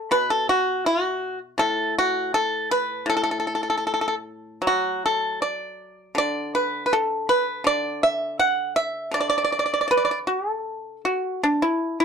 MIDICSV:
0, 0, Header, 1, 2, 480
1, 0, Start_track
1, 0, Tempo, 738007
1, 87, Time_signature, 2, 2, 24, 8
1, 2008, Tempo, 776197
1, 3448, Tempo, 744417
1, 5848, Tempo, 765306
1, 7674, End_track
2, 0, Start_track
2, 0, Title_t, "Pipa"
2, 0, Program_c, 0, 105
2, 0, Note_on_c, 0, 69, 69
2, 67, Note_off_c, 0, 69, 0
2, 71, Note_on_c, 0, 47, 47
2, 75, Note_on_c, 0, 71, 85
2, 191, Note_off_c, 0, 71, 0
2, 197, Note_on_c, 0, 69, 71
2, 312, Note_off_c, 0, 69, 0
2, 320, Note_on_c, 0, 66, 72
2, 545, Note_off_c, 0, 66, 0
2, 561, Note_on_c, 0, 66, 71
2, 897, Note_off_c, 0, 66, 0
2, 1024, Note_off_c, 0, 47, 0
2, 1026, Note_on_c, 0, 45, 56
2, 1036, Note_on_c, 0, 69, 90
2, 1262, Note_off_c, 0, 69, 0
2, 1291, Note_on_c, 0, 66, 74
2, 1511, Note_off_c, 0, 66, 0
2, 1523, Note_on_c, 0, 69, 83
2, 1748, Note_off_c, 0, 69, 0
2, 1765, Note_on_c, 0, 71, 76
2, 1981, Note_off_c, 0, 45, 0
2, 1989, Note_on_c, 0, 45, 53
2, 1991, Note_off_c, 0, 71, 0
2, 2013, Note_on_c, 0, 69, 70
2, 2049, Note_off_c, 0, 69, 0
2, 2056, Note_on_c, 0, 69, 52
2, 2092, Note_off_c, 0, 69, 0
2, 2099, Note_on_c, 0, 69, 55
2, 2139, Note_off_c, 0, 69, 0
2, 2147, Note_on_c, 0, 69, 46
2, 2188, Note_off_c, 0, 69, 0
2, 2199, Note_on_c, 0, 69, 47
2, 2238, Note_off_c, 0, 69, 0
2, 2245, Note_on_c, 0, 69, 42
2, 2284, Note_off_c, 0, 69, 0
2, 2294, Note_on_c, 0, 69, 47
2, 2331, Note_off_c, 0, 69, 0
2, 2343, Note_on_c, 0, 69, 39
2, 2378, Note_off_c, 0, 69, 0
2, 2386, Note_on_c, 0, 69, 45
2, 2424, Note_off_c, 0, 69, 0
2, 2433, Note_on_c, 0, 69, 39
2, 2471, Note_off_c, 0, 69, 0
2, 2491, Note_on_c, 0, 69, 45
2, 2524, Note_off_c, 0, 69, 0
2, 2533, Note_on_c, 0, 69, 41
2, 2569, Note_off_c, 0, 69, 0
2, 2580, Note_on_c, 0, 69, 49
2, 2613, Note_off_c, 0, 69, 0
2, 2621, Note_on_c, 0, 69, 42
2, 2660, Note_off_c, 0, 69, 0
2, 2954, Note_on_c, 0, 54, 49
2, 2988, Note_on_c, 0, 66, 67
2, 3203, Note_off_c, 0, 66, 0
2, 3225, Note_on_c, 0, 69, 61
2, 3439, Note_off_c, 0, 45, 0
2, 3440, Note_off_c, 0, 69, 0
2, 3450, Note_on_c, 0, 74, 64
2, 3913, Note_off_c, 0, 74, 0
2, 3920, Note_on_c, 0, 50, 50
2, 3942, Note_on_c, 0, 74, 82
2, 4165, Note_off_c, 0, 74, 0
2, 4178, Note_on_c, 0, 71, 73
2, 4363, Note_off_c, 0, 71, 0
2, 4379, Note_on_c, 0, 71, 48
2, 4415, Note_off_c, 0, 54, 0
2, 4422, Note_off_c, 0, 71, 0
2, 4423, Note_on_c, 0, 69, 70
2, 4646, Note_off_c, 0, 69, 0
2, 4657, Note_on_c, 0, 71, 75
2, 4876, Note_off_c, 0, 50, 0
2, 4881, Note_off_c, 0, 71, 0
2, 4884, Note_on_c, 0, 50, 52
2, 4899, Note_on_c, 0, 74, 87
2, 5119, Note_off_c, 0, 74, 0
2, 5135, Note_on_c, 0, 76, 82
2, 5353, Note_off_c, 0, 76, 0
2, 5369, Note_on_c, 0, 78, 80
2, 5589, Note_off_c, 0, 78, 0
2, 5604, Note_on_c, 0, 76, 75
2, 5825, Note_off_c, 0, 50, 0
2, 5830, Note_off_c, 0, 76, 0
2, 5833, Note_on_c, 0, 50, 46
2, 5850, Note_on_c, 0, 74, 72
2, 5882, Note_off_c, 0, 74, 0
2, 5890, Note_on_c, 0, 74, 50
2, 5935, Note_off_c, 0, 74, 0
2, 5947, Note_on_c, 0, 74, 56
2, 5988, Note_off_c, 0, 74, 0
2, 5998, Note_on_c, 0, 74, 45
2, 6033, Note_off_c, 0, 74, 0
2, 6040, Note_on_c, 0, 74, 51
2, 6081, Note_off_c, 0, 74, 0
2, 6090, Note_on_c, 0, 74, 42
2, 6125, Note_off_c, 0, 74, 0
2, 6132, Note_on_c, 0, 74, 49
2, 6166, Note_off_c, 0, 74, 0
2, 6173, Note_on_c, 0, 74, 44
2, 6215, Note_off_c, 0, 74, 0
2, 6223, Note_on_c, 0, 74, 46
2, 6262, Note_off_c, 0, 74, 0
2, 6269, Note_on_c, 0, 74, 40
2, 6303, Note_off_c, 0, 74, 0
2, 6311, Note_on_c, 0, 74, 44
2, 6331, Note_on_c, 0, 71, 72
2, 6357, Note_off_c, 0, 74, 0
2, 6372, Note_on_c, 0, 74, 46
2, 6412, Note_off_c, 0, 74, 0
2, 6418, Note_on_c, 0, 74, 50
2, 6451, Note_off_c, 0, 74, 0
2, 6458, Note_on_c, 0, 74, 46
2, 6502, Note_off_c, 0, 74, 0
2, 6554, Note_off_c, 0, 71, 0
2, 6559, Note_on_c, 0, 66, 66
2, 6703, Note_off_c, 0, 66, 0
2, 6703, Note_on_c, 0, 69, 66
2, 7021, Note_off_c, 0, 69, 0
2, 7047, Note_on_c, 0, 66, 64
2, 7272, Note_off_c, 0, 66, 0
2, 7284, Note_off_c, 0, 50, 0
2, 7288, Note_on_c, 0, 62, 67
2, 7401, Note_off_c, 0, 62, 0
2, 7407, Note_on_c, 0, 64, 60
2, 7630, Note_off_c, 0, 64, 0
2, 7644, Note_on_c, 0, 64, 72
2, 7674, Note_off_c, 0, 64, 0
2, 7674, End_track
0, 0, End_of_file